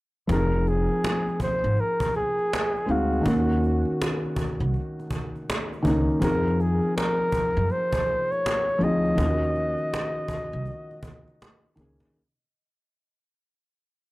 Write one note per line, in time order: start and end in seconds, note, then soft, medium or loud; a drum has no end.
0.27 0.86 F1 medium
0.27 1.53 F3 medium
0.27 1.54 C4 medium
0.27 1.55 D#4 medium
0.27 cajon bass medium
0.31 1.56 G#4 medium
0.31 0.70 A#4 loud
0.54 cajon slap soft
0.67 1.41 G#4 medium
0.67 cajon slap soft
0.88 cajon slap soft
1.04 cajon slap loud
1.28 cajon slap soft
1.40 1.82 C5 medium
1.40 cajon bass medium
1.64 1.76 G#1 medium
1.64 cajon slap soft
1.77 2.16 A#4 loud
1.77 cajon slap soft
2.00 cajon bass medium
2.14 2.93 G#4 loud
2.14 cajon slap soft
2.39 cajon slap soft
2.53 cajon slap loud
2.77 cajon slap soft
2.86 3.23 D2 medium
2.86 3.19 G#3 medium
2.86 3.20 C4 medium
2.86 3.21 D#4 medium
2.90 4.38 F#4 medium
2.90 3.22 F5 medium
2.90 cajon slap soft
3.13 cajon slap soft
3.22 4.49 D#3 medium
3.22 4.49 A#3 medium
3.22 4.50 C#4 medium
3.26 3.82 D#2 loud
3.26 4.51 F#4 medium
3.26 cajon bass medium
3.51 cajon slap soft
3.64 cajon slap soft
3.85 cajon slap soft
4.02 cajon slap loud
4.26 cajon slap soft
4.36 cajon bass medium
4.60 4.73 C2 medium
4.60 cajon slap soft
4.74 cajon slap soft
4.99 cajon slap soft
5.11 cajon bass medium
5.36 cajon slap soft
5.50 cajon slap loud
5.73 cajon slap soft
5.83 6.07 C#2 medium
5.83 6.16 D#3 medium
5.83 6.17 A#3 medium
5.83 6.18 C#4 medium
5.83 cajon bass medium
5.87 6.18 D#4 medium
6.10 cajon slap soft
6.20 6.78 F2 medium
6.20 7.46 F3 medium
6.20 7.47 C4 medium
6.20 7.47 D#4 medium
6.20 6.62 A#4 loud
6.20 cajon bass loud
6.24 7.48 G#4 medium
6.47 cajon slap soft
6.60 6.96 G#4 medium
6.60 cajon slap soft
6.81 cajon slap soft
6.97 7.73 A#4 loud
6.97 cajon slap loud
7.22 cajon slap soft
7.32 cajon bass medium
7.57 7.69 F#2 medium
7.57 cajon slap soft
7.70 8.33 C5 medium
7.70 cajon slap soft
7.93 cajon bass loud
8.06 cajon slap soft
8.32 8.85 C#5 loud
8.32 cajon slap soft
8.46 cajon slap loud
8.69 cajon slap soft
8.79 9.15 D2 medium
8.79 9.12 F3 medium
8.79 9.13 C4 medium
8.79 9.14 D#4 medium
8.79 cajon slap soft
8.83 9.15 G#4 medium
8.83 11.78 D#5 loud
9.06 cajon slap soft
9.15 9.75 D#2 medium
9.15 10.42 D#3 medium
9.15 10.42 A#3 medium
9.15 10.43 C#4 medium
9.15 cajon bass loud
9.20 9.27 F4 medium
9.26 10.47 F#4 medium
9.43 cajon slap soft
9.56 cajon slap soft
9.77 cajon slap soft
9.94 cajon slap loud
10.17 cajon slap soft
10.28 cajon bass medium
10.53 10.65 C2 medium
10.53 cajon slap soft
10.65 cajon slap soft
10.91 cajon slap soft
11.03 cajon bass medium
11.28 cajon slap soft
11.42 cajon slap loud
11.65 cajon slap soft
11.76 11.99 C#2 medium
11.76 12.09 D#3 medium
11.76 12.10 A#3 medium
11.76 12.10 C#4 medium
11.76 cajon bass medium
11.81 12.11 G#4 medium
12.00 cajon bass loud